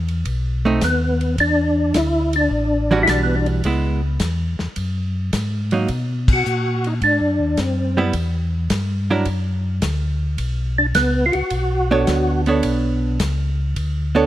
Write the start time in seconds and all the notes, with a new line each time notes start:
Already playing: E2
0.08 ride
0.25 B1, kick, ride
0.65 A3 C4 D#4
0.81 D#2 B3, kick, snare, hi-hat pedal, ride
1.21 ride
1.38 E2 D4, kick, ride
1.94 D2 E4, kick, snare, hi-hat pedal, ride
2.33 D4, ride
2.51 A1, kick
2.91 E3 G3 D4 F#4
3.03 B1 E4
3.07 D4, kick, snare, hi-hat pedal, ride
3.23 B3
3.35 D4
3.46 ride
3.64 C#2 G#3 B3 E4, kick, ride
4.20 E2, kick, snare, hi-hat pedal, ride
4.59 E2, snare
4.76 F#2, kick, ride
5.33 G#2, kick, snare, hi-hat pedal, ride
5.71 F#3 A#3 D#4, ride
5.88 B2, kick, ride
6.28 kick, crash
6.33 F#4
6.46 A#2, hi-hat pedal
6.84 D#4, ride
7.01 G#2 D4, kick, ride
7.21 F#2
7.39 D#2
7.57 F#2 C4, kick, snare, hi-hat pedal, ride
7.97 G3 B3 E4
8.13 E2, kick, ride
8.70 G2, kick, snare, hi-hat pedal, ride
9.11 F#3 D4 E4 A#4
9.25 F#2, kick, ride
9.82 D2, kick, snare, hi-hat pedal, ride
10.38 B1, kick, ride
10.78 D4
10.95 C#2 B3, kick, snare, hi-hat pedal, ride
11.26 F4
11.32 C#2 F#4, ride
11.50 B1, kick, ride
11.91 B3 D4 A4 C#5
12.07 D2, kick, snare, hi-hat pedal, ride
12.46 B3 D4 A4 C#5, ride
12.63 B1, kick, ride
13.20 C#2, kick, snare, hi-hat pedal, ride
13.76 D2, kick, ride
14.15 B3 D4 A4 C#5